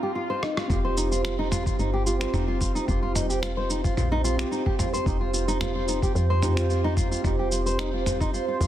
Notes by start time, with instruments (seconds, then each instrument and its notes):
Already playing: synth keys C4 F4 G4, swell
0.03 nylon-string guitar G4
0.15 nylon-string guitar F4
0.30 nylon-string guitar C5
0.42 nylon-string guitar D#4, cross-stick
0.57 nylon-string guitar F4, cross-stick
0.68 fm bass F1, synth keys C4 F4, nylon-string guitar F4, kick, mid tom, shaker
0.72 synth keys G4
0.81 analog synth pad C5, nylon-string guitar C5
0.97 nylon-string guitar D#4, shaker
1.12 nylon-string guitar F4, shaker
1.24 nylon-string guitar F4, finger snap, shaker
1.39 nylon-string guitar D#4
1.51 nylon-string guitar F4, mid tom, shaker
1.66 nylon-string guitar F4, kick, shaker
1.79 fm bass G1, nylon-string guitar D#4, shaker
1.94 nylon-string guitar G4
2.06 synth keys C4 F4 G4, nylon-string guitar F4, shaker
2.19 synth keys C4 F4, nylon-string guitar C5, finger snap, shaker
2.23 synth keys G4
2.33 fm bass F1, nylon-string guitar D#4, mid tom, shaker
2.48 nylon-string guitar F4
2.61 nylon-string guitar F4, kick, shaker
2.75 nylon-string guitar D#4, shaker
2.86 fm bass F1, synth keys C4 F4, nylon-string guitar F4, kick, shaker
2.90 synth keys G4
3.03 nylon-string guitar F4
3.15 nylon-string guitar D#4, mid tom, shaker
3.30 nylon-string guitar G4, shaker
3.42 nylon-string guitar F4, finger snap, shaker
3.57 nylon-string guitar C5
3.70 nylon-string guitar D#4, shaker
3.84 nylon-string guitar F4, kick, shaker
3.97 fm bass A#1, nylon-string guitar F4, mid tom, shaker
4.12 nylon-string guitar D#4
4.23 synth keys C4 F4 G4, nylon-string guitar F4, shaker
4.37 synth keys C4 F4 G4, finger snap, shaker
4.51 nylon-string guitar D#4, shaker
4.66 nylon-string guitar G4, kick
4.79 nylon-string guitar F4, kick, mid tom, shaker
4.93 nylon-string guitar C5, shaker
5.04 fm bass F1, synth keys C4 F4 G4, nylon-string guitar D#4, kick, shaker
5.21 nylon-string guitar F4
5.34 nylon-string guitar F4, shaker
5.48 nylon-string guitar D#4, shaker
5.61 nylon-string guitar F4, finger snap, mid tom, shaker
5.75 nylon-string guitar F4
5.88 nylon-string guitar D#4, shaker
6.02 nylon-string guitar G4, kick, shaker
6.15 fm bass F2, nylon-string guitar F4, shaker
6.30 nylon-string guitar C5
6.41 synth keys C4 F4 G4, nylon-string guitar D#4, mid tom, shaker
6.55 synth keys C4 F4 G4, nylon-string guitar F4, finger snap, shaker
6.70 nylon-string guitar F4, shaker
6.84 nylon-string guitar D#4
6.97 nylon-string guitar F4, kick, shaker
7.11 nylon-string guitar F4, shaker
7.22 fm bass F1, synth keys C4 F4 G4, nylon-string guitar D#4, kick, mid tom, shaker
7.39 nylon-string guitar G4
7.52 nylon-string guitar F4, shaker
7.66 nylon-string guitar C5, shaker
7.79 nylon-string guitar D#4, finger snap, shaker
7.94 nylon-string guitar F4
8.06 nylon-string guitar F4, mid tom, shaker
8.21 nylon-string guitar D#4, kick, shaker
8.34 nylon-string guitar F4, shaker
8.48 nylon-string guitar F4
8.60 fm bass F2, synth keys C4 F4 G4, nylon-string guitar F4, kick, shaker